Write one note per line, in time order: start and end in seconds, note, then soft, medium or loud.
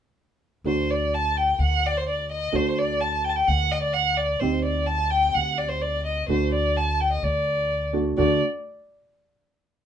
0.64 1.56 D2 medium
0.64 2.49 A3 soft
0.64 2.49 D4 soft
0.64 2.49 F#4 medium
0.64 0.92 C5 medium
0.90 1.16 D5 medium
1.14 1.38 A5 medium
1.37 1.59 G5 medium
1.59 2.51 D2 medium
1.59 1.88 F#5 medium
1.86 1.99 D5 medium
1.97 2.07 C5 medium
2.09 2.29 D5 medium
2.31 2.57 D#5 medium
2.52 3.45 D2 medium
2.52 4.37 A3 medium
2.52 4.37 D4 soft
2.52 4.37 F#4 medium
2.52 2.80 C5 medium
2.79 3.02 D5 medium
3.00 3.26 A5 medium
3.24 3.31 G5 medium
3.29 3.37 A5 medium
3.36 3.49 G5 medium
3.48 4.40 D2 medium
3.48 3.73 F#5 medium
3.72 3.82 D#5 medium
3.82 3.95 D5 medium
3.93 4.18 F#5 medium
4.17 4.41 D5 medium
4.39 5.33 D2 medium
4.39 6.26 C4 medium
4.39 6.26 D#4 soft
4.39 6.26 G4 medium
4.39 4.64 C5 medium
4.64 4.88 D5 medium
4.87 5.12 A5 medium
5.10 5.36 G5 medium
5.34 6.27 D2 medium
5.34 5.59 F#5 medium
5.58 5.70 D5 medium
5.69 5.83 C5 medium
5.82 6.05 D5 medium
6.06 6.28 D#5 medium
6.28 7.21 D2 medium
6.28 7.91 A3 medium
6.28 7.91 D4 soft
6.28 7.91 F#4 medium
6.28 6.51 C5 medium
6.54 6.78 D5 medium
6.77 7.02 A5 medium
7.01 7.12 G5 medium
7.12 7.25 D#5 medium
7.23 8.15 D2 medium
7.23 7.94 D5 medium
7.93 8.17 A3 soft
7.93 8.17 D4 soft
7.93 8.16 F#4 medium
8.17 8.40 D2 medium
8.17 8.40 A3 medium
8.17 8.40 D4 medium
8.17 8.39 F#4 medium
8.17 8.39 D5 medium